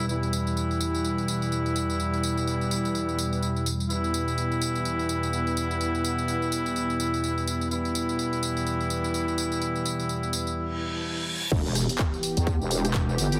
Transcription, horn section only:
0.09 3.73 E3 medium
0.09 3.73 G3 medium
0.09 3.73 B3 medium
0.09 3.73 E4 medium
3.90 7.68 E3 medium
3.90 7.68 G3 medium
3.90 7.68 B3 medium
3.90 7.68 E4 medium
7.71 11.49 E3 medium
7.71 11.49 G3 medium
7.71 11.49 B3 medium
7.71 11.49 E4 medium

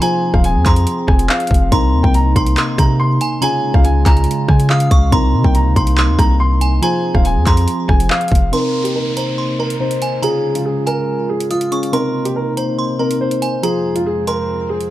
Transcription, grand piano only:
0.01 0.32 G#5 loud
0.34 0.42 F5 medium
0.45 0.60 G#5 medium
0.66 1.06 A#5 medium
1.07 1.24 G#5 medium
1.29 1.69 F5 medium
1.72 2.02 A#5 medium
2.03 2.11 G5 medium
2.15 2.31 A#5 medium
2.36 2.76 C6 medium
2.78 2.94 A#5 medium
3.00 3.40 C6 medium
3.42 3.72 G#5 loud
3.74 3.82 F5 medium
3.84 4.01 G#5 medium
4.06 4.46 A#5 medium
4.49 4.65 G#5 medium
4.70 5.10 F5 medium
5.13 5.43 A#5 loud
5.44 5.52 G5 medium
5.55 5.71 A#5 medium
5.76 6.16 C6 medium
6.18 6.34 A#5 medium
6.40 6.80 C6 medium
6.82 7.13 G#5 loud
7.15 7.23 F5 medium
7.25 7.41 G#5 medium
7.47 7.87 A#5 medium
7.88 8.04 G#5 medium
8.10 8.50 F5 medium
8.53 8.83 A#4 medium
8.84 8.92 G4 medium
8.96 9.11 A#4 medium
9.17 9.57 C5 medium
9.59 9.75 A#4 medium
9.80 10.20 C5 medium
10.23 10.53 G#4 medium
10.55 10.63 F4 medium
10.65 10.81 G#4 medium
10.87 11.27 A#4 medium
11.29 11.45 G#4 medium
11.51 11.91 F4 medium
11.93 12.23 A#4 medium
12.25 12.33 G4 medium
12.36 12.52 A#4 medium
12.57 12.97 C5 medium
12.99 13.15 A#4 medium
13.21 13.61 C5 medium
13.63 13.93 G#4 medium
13.96 14.03 F4 medium
14.06 14.22 G#4 medium
14.28 14.67 A#4 medium
14.69 14.85 G#4 medium

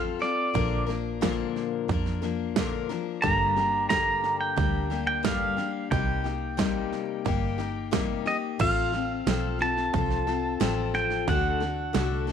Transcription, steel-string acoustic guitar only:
0.00 0.20 F3 medium
0.00 0.21 C4 medium
0.00 0.20 F4 medium
0.00 0.18 A4 medium
0.19 0.55 C4 soft
0.19 0.55 F4 soft
0.19 0.54 A4 medium
0.54 0.88 A#2 medium
0.54 0.88 D3 medium
0.54 0.88 F3 medium
0.54 0.88 A#3 medium
0.54 0.87 D4 medium
0.54 0.85 A#4 medium
0.86 1.21 F3 soft
0.86 1.21 A#3 soft
0.86 1.22 D4 soft
0.86 1.21 A#4 medium
1.21 1.88 A#2 medium
1.21 1.89 D3 medium
1.21 1.87 F3 medium
1.21 1.89 A#3 medium
1.21 1.91 D4 medium
1.21 1.92 A#4 medium
1.88 2.22 F3 medium
1.88 2.23 A#3 medium
1.88 2.22 D4 medium
1.88 2.20 A#4 medium
2.22 2.56 F3 soft
2.22 2.57 A#3 medium
2.22 2.56 D4 medium
2.22 2.56 A#4 medium
2.57 2.90 A#2 medium
2.57 2.90 D3 medium
2.57 2.90 F3 medium
2.57 2.91 A#3 medium
2.57 2.89 D4 medium
2.57 2.88 A#4 medium
2.89 3.24 F3 soft
2.89 3.23 A#3 medium
2.89 3.23 D4 medium
2.89 3.23 A#4 medium
3.23 3.57 G2 medium
3.23 3.57 D3 medium
3.23 3.57 G3 medium
3.23 3.57 A#3 medium
3.23 3.56 D4 medium
3.23 3.55 G4 medium
3.56 3.89 G3 soft
3.56 3.90 A#3 soft
3.56 3.90 D4 medium
3.56 3.90 G4 medium
3.89 4.57 G2 medium
3.89 4.57 D3 medium
3.89 4.56 G3 medium
3.89 4.57 A#3 medium
3.89 4.58 D4 medium
3.89 4.59 G4 medium
4.56 4.90 G3 medium
4.56 4.91 A#3 medium
4.56 4.90 D4 medium
4.56 4.89 G4 medium
4.90 5.23 G3 soft
4.90 5.23 A#3 soft
4.90 5.24 D4 medium
4.90 5.24 G4 medium
5.23 5.57 G2 medium
5.23 5.57 D3 medium
5.23 5.58 G3 medium
5.23 5.58 A#3 medium
5.23 5.57 D4 medium
5.23 5.56 G4 medium
5.57 5.91 G3 soft
5.57 5.92 A#3 soft
5.57 5.91 D4 medium
5.57 5.91 G4 medium
5.91 6.25 C3 medium
5.91 6.25 G3 medium
5.91 6.26 A#3 medium
5.91 6.25 D#4 medium
5.91 6.23 G4 medium
6.24 6.57 A#3 soft
6.24 6.58 D#4 soft
6.24 6.58 G4 medium
6.57 7.25 C3 medium
6.57 7.23 G3 medium
6.57 7.25 A#3 medium
6.57 7.26 D#4 medium
6.57 7.26 G4 medium
7.25 7.59 G3 medium
7.25 7.59 A#3 medium
7.25 7.59 D#4 medium
7.25 7.57 G4 medium
7.58 7.92 A#3 soft
7.58 7.92 D#4 medium
7.58 7.92 G4 medium
7.91 8.26 C3 medium
7.91 8.26 G3 medium
7.91 8.26 A#3 medium
7.91 8.26 D#4 medium
7.91 8.24 G4 medium
8.26 8.60 A#3 soft
8.26 8.60 D#4 medium
8.26 8.59 G4 medium
8.59 8.93 F3 medium
8.59 8.93 C4 medium
8.59 8.93 F4 medium
8.59 8.91 A4 medium
8.92 9.26 C4 soft
8.92 9.27 F4 soft
8.92 9.26 A4 soft
9.26 9.60 F3 medium
9.26 9.60 C4 medium
9.26 9.60 F4 medium
9.26 9.58 A4 medium
9.59 9.94 C4 soft
9.59 9.94 F4 soft
9.59 9.93 A4 medium
9.93 10.27 F3 medium
9.93 10.28 C4 medium
9.93 10.27 F4 medium
9.93 10.26 A4 medium
10.27 10.60 C4 soft
10.27 10.60 F4 soft
10.27 10.61 A4 medium
10.60 11.28 F3 medium
10.60 11.28 C4 loud
10.60 11.28 F4 medium
10.60 11.29 A4 medium
11.28 11.61 D3 medium
11.28 11.62 A3 medium
11.28 11.62 D4 medium
11.28 11.61 F#4 medium
11.28 11.59 A4 medium
11.60 11.94 D4 soft
11.60 11.94 F#4 soft
11.60 11.95 A4 medium
11.93 12.28 D3 medium
11.93 12.28 A3 medium
11.93 12.29 D4 medium
11.93 12.28 F#4 medium
11.93 12.26 A4 medium
12.27 12.32 F#4 medium
12.27 12.32 A4 medium

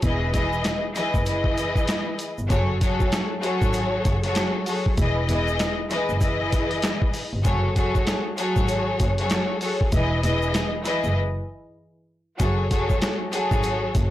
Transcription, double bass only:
0.03 0.29 E1 loud
0.34 0.50 E1 medium
1.15 1.85 F#1 medium
2.38 2.49 G1 medium
2.51 3.02 F#1 loud
3.62 3.72 G#1 medium
4.06 4.31 F#1 medium
4.98 5.24 E1 loud
5.29 5.44 E1 medium
6.10 6.80 F#1 loud
7.33 7.44 G1 medium
7.46 7.97 F#1 loud
8.57 8.67 G#1 loud
9.00 9.26 F#1 medium
9.93 10.19 E1 loud
10.24 10.39 E1 loud
11.04 11.16 F#1 medium
12.40 12.92 F#1 loud
13.52 13.62 G#1 medium
13.95 14.10 F#1 medium

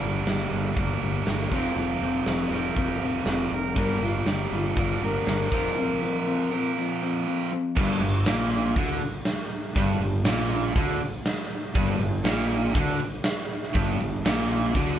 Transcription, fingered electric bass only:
0.01 0.21 G1 medium
0.26 0.46 G1 medium
0.51 0.71 G1 medium
0.77 0.97 G1 medium
1.02 1.22 G1 medium
1.26 1.46 G1 medium
1.51 1.72 F1 medium
1.76 1.97 F1 medium
2.01 2.21 F1 medium
2.27 2.47 F1 medium
2.51 2.71 F1 medium
2.77 2.97 F1 medium
3.01 3.22 F1 medium
3.26 3.46 F1 medium
3.52 3.76 F1 medium
3.76 3.97 G1 medium
4.01 4.21 G1 medium
4.26 4.47 G1 medium
4.52 4.72 G1 medium
4.76 4.97 G1 medium
5.02 5.22 G1 medium
5.28 5.47 G1 medium
5.52 5.72 F1 medium
7.77 8.00 G1 medium
8.00 8.24 G1 medium
8.26 8.73 A#1 medium
8.76 8.99 D2 medium
9.76 9.99 G1 medium
10.00 10.24 G1 medium
10.25 10.72 A#1 medium
10.76 10.99 D2 medium
11.75 11.98 G1 loud
11.99 12.23 G1 medium
12.25 12.72 A#1 medium
12.75 12.99 D2 medium
13.75 13.98 G1 loud
14.01 14.24 G1 medium
14.25 14.72 A#1 medium
14.76 14.99 D2 loud

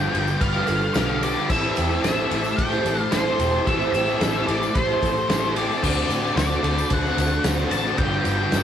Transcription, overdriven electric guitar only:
0.00 0.41 G2 loud
0.00 0.41 D3 loud
0.00 0.12 F3 loud
0.00 0.14 G3 loud
0.00 0.14 B3 loud
0.00 0.16 G4 loud
0.13 0.26 F3 medium
0.13 0.27 G3 medium
0.13 0.26 B3 medium
0.13 0.26 G4 medium
0.27 muted overdriven electric guitar stroke medium
0.55 0.81 F3 medium
0.55 0.81 G3 medium
0.55 0.81 B3 medium
0.55 0.81 G4 medium
0.82 muted overdriven electric guitar stroke medium
0.94 1.36 G2 medium
0.94 1.36 D3 loud
0.94 1.09 F3 loud
0.94 1.08 G3 loud
0.94 1.07 B3 loud
0.94 1.07 G4 loud
1.07 1.20 F3 medium
1.07 1.22 G3 medium
1.07 1.21 B3 medium
1.07 1.23 G4 medium
1.21 1.35 F3 medium
1.21 1.35 G3 medium
1.21 1.34 B3 medium
1.21 1.33 G4 medium
1.33 1.48 F3 medium
1.33 1.49 G3 medium
1.33 1.48 B3 medium
1.33 1.50 G4 medium
1.48 2.01 A2 loud
1.48 2.01 E3 loud
1.48 1.92 C4 loud
1.48 1.90 E4 loud
1.48 1.88 A4 loud
1.89 2.02 C4 medium
1.89 2.03 E4 medium
1.89 2.04 A4 medium
2.01 3.11 A2 loud
2.01 2.28 E3 loud
2.01 2.30 C4 loud
2.01 2.30 E4 loud
2.01 2.31 A4 loud
2.29 2.43 E3 medium
2.29 2.43 C4 medium
2.29 2.42 E4 medium
2.29 2.43 A4 medium
2.43 muted overdriven electric guitar stroke medium
2.69 2.99 C4 medium
2.69 2.98 E4 medium
2.69 2.99 A4 medium
2.99 muted overdriven electric guitar stroke medium
3.12 3.53 A2 loud
3.12 3.37 E3 loud
3.12 3.27 C4 loud
3.12 3.24 E4 loud
3.12 3.24 A4 loud
3.24 3.39 C4 medium
3.24 3.39 E4 medium
3.24 3.40 A4 medium
3.38 3.65 E3 medium
3.38 3.53 C4 medium
3.38 3.53 E4 medium
3.38 3.51 A4 medium
3.52 3.66 C4 medium
3.52 3.67 E4 medium
3.52 3.66 A4 medium
3.65 4.19 A2 loud
3.65 4.20 E3 loud
3.65 4.08 C4 loud
3.65 4.07 E4 loud
3.65 4.05 A4 loud
4.06 4.21 C4 medium
4.06 4.22 E4 medium
4.06 4.22 A4 medium
4.20 4.75 A2 loud
4.20 4.46 E3 loud
4.20 4.47 C4 loud
4.20 4.48 E4 loud
4.20 4.49 A4 loud
4.47 4.61 E3 medium
4.47 4.62 C4 medium
4.47 4.61 E4 medium
4.47 4.61 A4 medium
4.62 muted overdriven electric guitar stroke soft
4.87 5.15 C4 medium
4.87 5.15 E4 medium
4.87 5.15 A4 medium
5.16 muted overdriven electric guitar stroke soft
5.28 5.69 A2 loud
5.28 5.54 E3 medium
5.28 5.44 C4 loud
5.28 5.43 E4 loud
5.28 5.41 A4 loud
5.42 5.55 C4 medium
5.42 5.56 E4 medium
5.42 5.57 A4 medium
5.55 5.80 E3 medium
5.55 5.69 C4 medium
5.55 5.68 E4 medium
5.55 5.67 A4 medium
5.68 5.81 C4 medium
5.68 5.81 E4 medium
5.68 5.81 A4 medium
5.81 6.34 D3 medium
5.81 6.24 A3 loud
5.81 6.23 C4 loud
5.81 6.21 F#4 loud
6.22 6.35 A3 medium
6.22 6.36 C4 medium
6.22 6.37 F#4 medium
6.35 6.62 D3 loud
6.35 6.63 A3 loud
6.35 6.64 C4 loud
6.35 6.65 F#4 loud
6.63 7.04 D3 medium
6.63 6.78 A3 medium
6.63 6.77 C4 medium
6.63 6.76 F#4 medium
6.78 muted overdriven electric guitar stroke soft
7.05 7.31 A3 medium
7.05 7.31 C4 medium
7.05 7.31 F#4 medium
7.32 muted overdriven electric guitar stroke soft
7.45 7.69 D3 loud
7.45 7.59 A3 loud
7.45 7.58 C4 loud
7.45 7.57 F#4 loud
7.58 7.70 A3 medium
7.58 7.70 C4 medium
7.58 7.71 F#4 medium
7.70 7.96 D3 medium
7.70 7.87 A3 medium
7.70 7.85 C4 medium
7.70 7.84 F#4 medium
7.85 7.99 A3 medium
7.85 7.98 C4 medium
7.85 7.97 F#4 medium
7.99 8.52 G2 loud
7.99 8.52 D3 loud
7.99 8.40 F3 loud
7.99 8.40 G3 loud
7.99 8.38 B3 loud
7.99 8.38 G4 loud
8.38 8.53 F3 medium
8.38 8.54 G3 medium
8.38 8.54 B3 medium
8.38 8.55 G4 medium
8.53 8.63 G2 loud
8.53 8.63 D3 loud
8.53 8.63 F3 loud
8.53 8.63 G3 loud
8.53 8.63 B3 loud
8.53 8.63 G4 loud

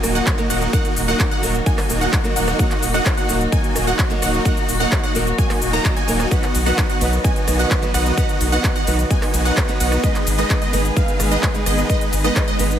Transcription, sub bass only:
0.03 0.21 D#1 medium
0.50 0.67 D#1 medium
0.96 1.14 D#1 loud
1.43 1.60 D#1 loud
1.90 2.07 D#1 medium
2.36 2.53 D#1 medium
2.83 3.00 D#1 loud
3.29 3.46 D#1 loud
3.76 3.93 D#1 medium
4.22 4.39 D#1 medium
4.69 4.86 D#1 loud
5.15 5.32 D#1 loud
5.62 5.79 D#1 medium
6.08 6.25 D#1 medium
6.55 6.72 B1 loud
7.01 7.18 B1 loud
7.48 7.65 B1 medium
7.94 8.12 B1 medium
8.41 8.58 B1 loud
8.87 9.05 B1 loud
9.34 9.51 B1 medium
9.80 9.98 B1 medium
10.27 10.44 G#1 loud
10.73 10.91 G#1 loud
11.20 11.37 G#1 medium
11.66 11.84 G#1 medium
12.13 12.30 G#1 loud
12.59 12.77 G#1 loud

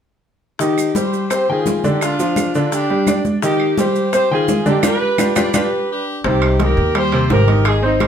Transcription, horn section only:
0.61 0.94 D#4 medium
0.61 0.93 G4 medium
0.97 1.30 G4 medium
0.97 1.29 C5 medium
1.32 1.49 G4 medium
1.32 1.48 C5 medium
1.50 1.83 F4 medium
1.50 1.82 G#4 medium
1.85 2.02 D#4 medium
1.85 2.02 G4 medium
2.03 2.52 D4 medium
2.03 2.52 F4 medium
2.56 2.72 D4 medium
2.56 2.72 F4 medium
2.73 3.22 D4 medium
2.73 3.22 G4 medium
3.44 3.76 D#4 medium
3.44 3.76 G4 loud
3.79 4.11 G4 medium
3.79 4.11 C5 medium
4.14 4.31 G4 medium
4.14 4.30 C5 medium
4.32 4.65 F4 medium
4.32 4.65 G#4 medium
4.68 4.84 D#4 medium
4.68 4.84 G4 medium
4.86 5.34 G4 medium
4.86 5.35 B4 loud
5.38 5.54 B4 medium
5.38 5.54 D5 medium
5.56 5.90 G4 medium
5.56 6.04 B4 medium
5.92 6.24 D4 medium
5.92 6.24 G4 medium
6.27 6.59 D#4 medium
6.27 6.59 G4 medium
6.62 6.96 G4 medium
6.62 6.96 A#4 medium
6.98 7.29 G4 medium
6.98 7.29 C5 loud
7.32 7.64 G4 medium
7.32 7.64 A#4 medium
7.66 7.83 D#4 medium
7.66 7.82 G#4 medium
7.84 8.07 C4 medium
7.84 8.07 D#4 medium

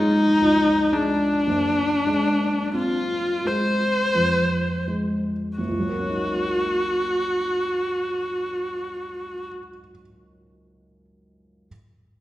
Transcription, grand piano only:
0.00 1.42 F#1 soft
0.00 0.92 G#3 soft
0.00 0.22 C#4 soft
0.41 1.24 C#2 soft
0.92 1.46 G#3 soft
1.47 5.54 F#1 soft
2.07 3.17 G#3 soft
2.74 3.87 C4 soft
3.45 4.57 G#3 soft
4.15 5.30 F2 soft
4.88 5.58 G#3 soft
5.58 9.48 F#1 soft
5.68 9.58 C#2 soft
5.79 9.69 F#3 soft
5.89 9.79 A#3 soft
5.99 9.89 C#4 soft
6.09 9.99 D#4 soft

